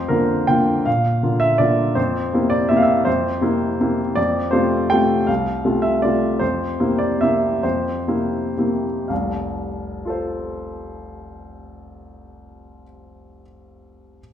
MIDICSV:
0, 0, Header, 1, 2, 480
1, 0, Start_track
1, 0, Key_signature, -1, "major"
1, 0, Tempo, 381922
1, 1085, Time_signature, 3, 2, 24, 8
1, 1085, Tempo, 367647
1, 7325, Tempo, 393443
1, 9245, Tempo, 427350
1, 10205, Tempo, 514580
1, 11165, Tempo, 474684
1, 16454, End_track
2, 0, Start_track
2, 0, Title_t, "Grand piano"
2, 0, Program_c, 0, 0
2, 0, Control_c, 0, 64, 127
2, 0, Note_on_c, 0, 41, 43
2, 0, Note_on_c, 0, 72, 60
2, 106, Note_on_c, 0, 70, 52
2, 120, Note_on_c, 0, 50, 36
2, 125, Note_on_c, 0, 58, 32
2, 135, Note_on_c, 0, 65, 36
2, 562, Note_off_c, 0, 50, 0
2, 564, Note_off_c, 0, 58, 0
2, 569, Note_off_c, 0, 65, 0
2, 596, Note_on_c, 0, 79, 62
2, 603, Note_off_c, 0, 70, 0
2, 613, Note_on_c, 0, 50, 33
2, 621, Note_on_c, 0, 58, 30
2, 626, Note_on_c, 0, 65, 38
2, 1038, Note_off_c, 0, 50, 0
2, 1042, Note_off_c, 0, 58, 0
2, 1045, Note_off_c, 0, 65, 0
2, 1074, Note_on_c, 0, 77, 54
2, 1077, Note_off_c, 0, 79, 0
2, 1082, Note_on_c, 0, 46, 40
2, 1109, Control_c, 0, 64, 0
2, 1113, Note_off_c, 0, 72, 0
2, 1120, Note_off_c, 0, 41, 0
2, 1290, Control_c, 0, 64, 127
2, 1540, Note_off_c, 0, 46, 0
2, 1560, Note_on_c, 0, 58, 33
2, 1564, Note_on_c, 0, 50, 36
2, 1574, Note_on_c, 0, 65, 37
2, 1782, Note_on_c, 0, 76, 68
2, 1795, Note_off_c, 0, 77, 0
2, 2001, Note_off_c, 0, 58, 0
2, 2003, Note_off_c, 0, 50, 0
2, 2008, Note_off_c, 0, 65, 0
2, 2023, Note_on_c, 0, 74, 64
2, 2037, Note_off_c, 0, 76, 0
2, 2042, Note_on_c, 0, 50, 33
2, 2055, Note_on_c, 0, 58, 31
2, 2055, Note_on_c, 0, 65, 35
2, 2472, Note_off_c, 0, 50, 0
2, 2479, Note_off_c, 0, 65, 0
2, 2480, Note_off_c, 0, 58, 0
2, 2508, Note_on_c, 0, 72, 59
2, 2510, Note_off_c, 0, 74, 0
2, 2517, Note_on_c, 0, 41, 44
2, 2547, Control_c, 0, 64, 0
2, 2754, Control_c, 0, 64, 127
2, 2980, Note_off_c, 0, 41, 0
2, 3006, Note_on_c, 0, 48, 34
2, 3012, Note_on_c, 0, 58, 35
2, 3022, Note_on_c, 0, 64, 40
2, 3218, Note_on_c, 0, 74, 73
2, 3229, Note_off_c, 0, 72, 0
2, 3435, Note_off_c, 0, 48, 0
2, 3438, Note_off_c, 0, 58, 0
2, 3443, Note_off_c, 0, 64, 0
2, 3465, Note_on_c, 0, 76, 60
2, 3469, Note_off_c, 0, 74, 0
2, 3481, Note_on_c, 0, 48, 34
2, 3487, Note_on_c, 0, 58, 33
2, 3493, Note_on_c, 0, 64, 37
2, 3565, Note_off_c, 0, 76, 0
2, 3567, Note_on_c, 0, 77, 56
2, 3646, Note_on_c, 0, 76, 60
2, 3662, Note_off_c, 0, 77, 0
2, 3908, Note_off_c, 0, 48, 0
2, 3911, Note_off_c, 0, 58, 0
2, 3915, Note_off_c, 0, 64, 0
2, 3938, Note_on_c, 0, 72, 56
2, 3945, Note_off_c, 0, 76, 0
2, 3958, Note_on_c, 0, 41, 47
2, 3980, Control_c, 0, 64, 0
2, 4211, Control_c, 0, 64, 127
2, 4415, Note_off_c, 0, 41, 0
2, 4415, Note_on_c, 0, 48, 37
2, 4428, Note_on_c, 0, 58, 38
2, 4428, Note_on_c, 0, 64, 42
2, 4863, Note_off_c, 0, 48, 0
2, 4870, Note_off_c, 0, 58, 0
2, 4870, Note_off_c, 0, 64, 0
2, 4927, Note_on_c, 0, 48, 37
2, 4929, Note_on_c, 0, 58, 38
2, 4933, Note_on_c, 0, 64, 39
2, 5155, Note_off_c, 0, 72, 0
2, 5355, Note_off_c, 0, 48, 0
2, 5357, Note_off_c, 0, 58, 0
2, 5359, Note_off_c, 0, 64, 0
2, 5383, Note_on_c, 0, 74, 71
2, 5400, Note_on_c, 0, 41, 47
2, 5426, Control_c, 0, 64, 0
2, 5667, Control_c, 0, 64, 127
2, 5843, Note_on_c, 0, 72, 56
2, 5854, Note_off_c, 0, 41, 0
2, 5860, Note_off_c, 0, 74, 0
2, 5865, Note_on_c, 0, 48, 40
2, 5867, Note_on_c, 0, 57, 39
2, 5871, Note_on_c, 0, 65, 43
2, 6321, Note_off_c, 0, 48, 0
2, 6322, Note_off_c, 0, 57, 0
2, 6325, Note_off_c, 0, 65, 0
2, 6353, Note_on_c, 0, 79, 70
2, 6361, Note_off_c, 0, 72, 0
2, 6375, Note_on_c, 0, 48, 37
2, 6382, Note_on_c, 0, 65, 40
2, 6384, Note_on_c, 0, 57, 38
2, 6810, Note_off_c, 0, 48, 0
2, 6814, Note_off_c, 0, 65, 0
2, 6815, Note_off_c, 0, 57, 0
2, 6834, Note_on_c, 0, 77, 55
2, 6847, Note_off_c, 0, 79, 0
2, 6853, Note_on_c, 0, 36, 42
2, 6882, Control_c, 0, 64, 0
2, 7056, Control_c, 0, 64, 127
2, 7307, Note_off_c, 0, 36, 0
2, 7331, Note_on_c, 0, 48, 38
2, 7333, Note_on_c, 0, 57, 39
2, 7344, Note_on_c, 0, 65, 39
2, 7542, Note_on_c, 0, 76, 62
2, 7545, Note_off_c, 0, 77, 0
2, 7752, Note_off_c, 0, 48, 0
2, 7753, Note_off_c, 0, 57, 0
2, 7759, Note_off_c, 0, 65, 0
2, 7787, Note_off_c, 0, 76, 0
2, 7788, Note_on_c, 0, 74, 62
2, 7804, Note_on_c, 0, 48, 32
2, 7811, Note_on_c, 0, 57, 32
2, 7814, Note_on_c, 0, 65, 37
2, 8217, Note_off_c, 0, 48, 0
2, 8220, Note_off_c, 0, 57, 0
2, 8223, Note_off_c, 0, 65, 0
2, 8243, Note_on_c, 0, 72, 57
2, 8255, Note_off_c, 0, 74, 0
2, 8263, Note_on_c, 0, 41, 39
2, 8281, Control_c, 0, 64, 0
2, 8515, Control_c, 0, 64, 127
2, 8722, Note_off_c, 0, 41, 0
2, 8734, Note_on_c, 0, 48, 35
2, 8736, Note_on_c, 0, 58, 37
2, 8736, Note_on_c, 0, 64, 41
2, 8964, Note_on_c, 0, 74, 61
2, 8978, Note_off_c, 0, 72, 0
2, 9195, Note_off_c, 0, 48, 0
2, 9196, Note_off_c, 0, 58, 0
2, 9196, Note_off_c, 0, 64, 0
2, 9232, Note_off_c, 0, 74, 0
2, 9234, Note_on_c, 0, 76, 61
2, 9250, Note_on_c, 0, 48, 31
2, 9255, Note_on_c, 0, 64, 35
2, 9260, Note_on_c, 0, 58, 34
2, 9673, Note_off_c, 0, 48, 0
2, 9676, Note_off_c, 0, 64, 0
2, 9678, Note_off_c, 0, 58, 0
2, 9710, Note_off_c, 0, 76, 0
2, 9711, Note_on_c, 0, 72, 52
2, 9720, Note_on_c, 0, 41, 41
2, 9738, Control_c, 0, 64, 0
2, 9964, Control_c, 0, 64, 127
2, 10192, Note_off_c, 0, 41, 0
2, 10211, Note_on_c, 0, 48, 30
2, 10214, Note_on_c, 0, 58, 30
2, 10217, Note_on_c, 0, 64, 34
2, 10635, Note_off_c, 0, 48, 0
2, 10636, Note_off_c, 0, 58, 0
2, 10638, Note_off_c, 0, 64, 0
2, 10673, Note_on_c, 0, 48, 24
2, 10681, Note_on_c, 0, 58, 29
2, 10685, Note_on_c, 0, 64, 30
2, 10926, Note_off_c, 0, 72, 0
2, 11129, Note_off_c, 0, 48, 0
2, 11133, Note_off_c, 0, 58, 0
2, 11135, Note_off_c, 0, 64, 0
2, 11146, Note_on_c, 0, 77, 37
2, 11156, Note_on_c, 0, 29, 32
2, 11162, Note_on_c, 0, 36, 36
2, 11186, Control_c, 0, 64, 0
2, 11360, Control_c, 0, 64, 127
2, 12129, Note_on_c, 0, 65, 27
2, 12149, Note_on_c, 0, 69, 28
2, 12175, Note_on_c, 0, 72, 28
2, 14916, Note_off_c, 0, 77, 0
2, 14927, Note_off_c, 0, 29, 0
2, 14933, Note_off_c, 0, 36, 0
2, 15522, Note_off_c, 0, 65, 0
2, 15532, Note_off_c, 0, 69, 0
2, 15545, Note_off_c, 0, 72, 0
2, 16321, Control_c, 0, 64, 0
2, 16454, End_track
0, 0, End_of_file